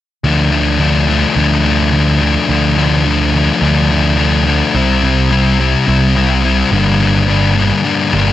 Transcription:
0.24 1.24 D2 medium
0.24 0.50 D3 medium
0.24 0.51 F3 medium
0.24 0.52 A3 medium
0.24 0.51 D4 medium
0.51 0.79 D3 medium
0.51 0.79 F3 medium
0.51 0.80 A3 medium
0.51 0.80 D4 medium
0.79 1.08 D3 medium
0.79 1.09 F3 medium
0.79 1.09 A3 medium
0.79 1.09 D4 medium
1.09 1.35 D3 medium
1.09 1.36 F3 medium
1.09 1.36 A3 medium
1.09 1.37 D4 medium
1.36 2.36 D2 medium
1.36 1.63 D3 medium
1.36 1.64 F3 medium
1.36 1.64 A3 medium
1.36 1.65 D4 medium
1.64 1.91 D3 medium
1.64 1.92 F3 medium
1.64 1.93 A3 medium
1.64 1.93 D4 medium
1.93 2.20 D3 medium
1.93 2.20 F3 medium
1.93 2.20 A3 medium
1.93 2.21 D4 medium
2.21 2.48 D3 medium
2.21 2.48 F3 medium
2.21 2.48 A3 medium
2.21 2.49 D4 medium
2.49 3.49 D2 medium
2.49 2.76 D3 medium
2.49 2.76 F3 medium
2.49 2.76 A3 medium
2.49 2.78 D4 medium
2.77 3.04 D3 medium
2.77 3.05 F3 medium
2.77 3.05 A3 medium
2.77 3.05 D4 medium
3.05 3.33 D3 medium
3.05 3.34 F3 medium
3.05 3.34 A3 medium
3.05 3.36 D4 medium
3.34 3.61 D3 medium
3.34 3.62 F3 medium
3.34 3.62 A3 medium
3.34 3.63 D4 medium
3.62 4.61 D2 medium
3.62 3.89 D3 medium
3.62 3.90 F3 medium
3.62 3.90 A3 loud
3.62 3.91 D4 loud
3.91 4.17 D3 medium
3.91 4.18 F3 medium
3.91 4.18 A3 medium
3.91 4.19 D4 medium
4.18 4.45 D3 medium
4.18 4.46 F3 medium
4.18 4.46 A3 loud
4.18 4.47 D4 loud
4.46 4.73 D3 medium
4.46 4.74 F3 medium
4.46 4.74 A3 medium
4.46 4.77 D4 medium
4.75 5.74 C2 medium
4.75 5.02 C3 medium
4.75 5.03 G3 medium
4.75 5.03 C4 medium
4.75 5.04 E4 medium
5.03 5.30 C3 medium
5.03 5.31 G3 medium
5.03 5.31 C4 medium
5.03 5.30 E4 medium
5.31 5.58 C3 medium
5.31 5.59 G3 medium
5.31 5.59 C4 medium
5.31 5.59 E4 medium
5.59 5.86 C3 medium
5.59 5.87 G3 medium
5.59 5.87 C4 medium
5.59 5.87 E4 medium
5.87 6.62 C2 medium
5.87 6.15 C3 medium
5.87 6.15 G3 loud
5.87 6.15 C4 medium
5.87 6.16 E4 loud
6.16 6.43 C3 medium
6.16 6.43 G3 medium
6.16 6.43 C4 medium
6.16 6.44 E4 medium
6.44 6.70 C3 medium
6.44 6.70 G3 medium
6.44 6.71 C4 medium
6.44 6.71 E4 medium
6.71 7.70 G1 medium
6.71 6.98 G2 medium
6.71 6.98 D3 medium
6.71 6.99 G3 medium
6.71 6.99 A#3 medium
6.71 6.99 D4 medium
7.00 7.27 G2 medium
7.00 7.27 D3 medium
7.00 7.27 G3 medium
7.00 7.28 A#3 medium
7.00 7.28 D4 medium
7.28 7.55 G2 medium
7.28 7.55 D3 medium
7.28 7.56 G3 medium
7.28 7.56 A#3 medium
7.28 7.56 D4 medium
7.56 7.83 G2 medium
7.56 7.84 D3 loud
7.56 7.84 G3 medium
7.56 7.85 A#3 medium
7.56 7.85 D4 loud
7.84 8.11 G2 medium
7.84 8.11 D3 medium
7.84 8.12 G3 medium
7.84 8.12 A#3 medium
7.84 8.13 D4 medium
8.12 8.33 G1 medium
8.12 8.33 G2 medium
8.12 8.33 D3 medium
8.12 8.33 G3 loud
8.12 8.33 A#3 medium
8.12 8.33 D4 loud

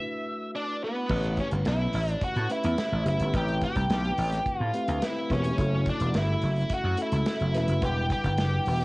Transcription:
0.00 1.08 A3 medium
0.00 1.12 D4 medium
0.00 1.09 E4 medium
0.00 1.12 F#4 medium
0.00 1.10 B4 medium
0.00 0.50 E5 medium
0.56 0.84 D4 medium
0.84 1.40 B3 medium
1.08 1.40 A1 medium
1.08 1.95 A3 medium
1.08 1.16 B3 soft
1.08 1.95 E4 medium
1.08 1.95 G4 medium
1.08 1.95 B4 medium
1.08 kick loud
1.08 crash medium
1.15 1.98 C#4 medium
1.23 closed hi-hat soft
1.37 1.48 C#4 medium
1.37 kick medium
1.37 closed hi-hat medium
1.51 1.62 G1 medium
1.51 closed hi-hat medium
1.65 1.86 B1 loud
1.65 2.12 E4 medium
1.65 snare loud
1.65 closed hi-hat medium
1.93 2.14 A1 medium
1.93 open hi-hat medium
2.08 closed hi-hat soft
2.12 2.24 D4 medium
2.21 2.51 F#4 medium
2.21 muted slap bass stroke soft
2.21 kick medium
2.21 closed hi-hat medium
2.36 2.46 A2 medium
2.36 closed hi-hat soft
2.49 2.92 A3 medium
2.49 2.93 C#4 medium
2.49 2.93 E4 medium
2.49 3.03 E4 medium
2.49 2.93 G4 medium
2.49 2.93 B4 medium
2.49 closed hi-hat medium
2.63 2.74 E2 medium
2.63 closed hi-hat soft
2.78 snare loud
2.78 closed hi-hat loud
2.92 3.02 A1 medium
3.05 3.16 F#1 medium
3.05 3.27 A3 medium
3.05 3.27 C#4 medium
3.05 3.27 E4 medium
3.05 3.36 E4 medium
3.05 3.27 G4 medium
3.05 3.28 B4 medium
3.05 closed hi-hat medium
3.20 3.30 G1 medium
3.20 closed hi-hat soft
3.33 3.64 A1 medium
3.33 4.19 A3 medium
3.33 4.19 C4 medium
3.33 4.19 E4 medium
3.33 4.19 G4 medium
3.33 3.63 G4 loud
3.33 4.20 B4 medium
3.33 kick loud
3.33 closed hi-hat medium
3.48 closed hi-hat soft
3.62 4.60 G4 medium
3.62 kick medium
3.62 closed hi-hat medium
3.76 3.86 C2 medium
3.76 kick medium
3.76 closed hi-hat medium
3.90 4.10 B1 medium
3.90 snare loud
3.90 closed hi-hat medium
4.04 closed hi-hat soft
4.18 4.38 A1 loud
4.18 open hi-hat medium
4.32 snare soft
4.32 closed hi-hat soft
4.46 muted slap bass stroke soft
4.46 kick medium
4.46 closed hi-hat medium
4.60 4.70 A2 medium
4.60 5.04 F4 medium
4.74 5.17 A3 medium
4.74 5.17 C4 medium
4.74 5.17 E4 medium
4.74 5.17 G4 medium
4.74 5.17 B4 medium
4.74 closed hi-hat medium
4.88 4.98 D2 medium
4.88 closed hi-hat medium
5.02 5.30 E4 medium
5.02 snare loud
5.02 closed hi-hat loud
5.30 5.50 E1 medium
5.30 5.51 A3 medium
5.30 5.52 C4 medium
5.30 5.89 C#4 medium
5.30 5.52 E4 medium
5.30 5.52 G4 medium
5.30 5.52 B4 medium
5.30 kick medium
5.30 snare soft
5.30 closed hi-hat medium
5.44 closed hi-hat medium
5.57 5.88 F#1 loud
5.57 6.43 A3 medium
5.57 6.43 C#4 medium
5.57 6.43 E4 medium
5.57 6.43 F#4 medium
5.57 6.44 A4 medium
5.57 kick loud
5.57 closed hi-hat medium
5.86 6.17 D4 medium
5.86 kick medium
5.86 closed hi-hat medium
6.00 6.10 E1 medium
6.00 closed hi-hat medium
6.14 6.34 G1 medium
6.14 6.74 E4 medium
6.14 snare loud
6.14 closed hi-hat medium
6.42 6.63 F#1 medium
6.42 open hi-hat medium
6.56 closed hi-hat soft
6.70 muted slap bass stroke soft
6.70 kick medium
6.70 closed hi-hat medium
6.74 7.01 F#4 medium
6.84 6.94 F#2 medium
6.97 7.40 A3 medium
6.97 7.41 C#4 medium
6.97 7.41 E4 medium
6.97 7.41 F#4 medium
6.97 7.41 A4 medium
6.97 closed hi-hat medium
7.02 7.57 E4 loud
7.12 7.22 C#2 medium
7.12 closed hi-hat medium
7.26 snare loud
7.26 closed hi-hat loud
7.40 7.54 F#1 medium
7.40 closed hi-hat soft
7.54 7.64 E1 medium
7.54 7.75 A3 medium
7.54 7.76 C#4 medium
7.54 7.76 E4 medium
7.54 7.76 F#4 medium
7.54 7.76 B4 medium
7.54 snare soft
7.54 closed hi-hat medium
7.58 7.84 E4 medium
7.68 7.78 F#1 medium
7.68 closed hi-hat medium
7.81 8.12 E1 loud
7.81 8.67 G3 medium
7.81 8.67 D4 medium
7.81 8.68 E4 medium
7.81 8.11 G4 loud
7.81 8.68 B4 medium
7.81 8.67 F#5 medium
7.81 kick loud
7.81 closed hi-hat medium
8.10 8.85 G4 medium
8.10 kick medium
8.10 closed hi-hat medium
8.24 8.38 G1 medium
8.24 kick medium
8.24 closed hi-hat medium
8.38 8.59 F#1 medium
8.38 snare loud
8.38 closed hi-hat medium
8.66 8.85 E1 medium
8.66 open hi-hat medium
8.80 snare soft
8.80 closed hi-hat soft

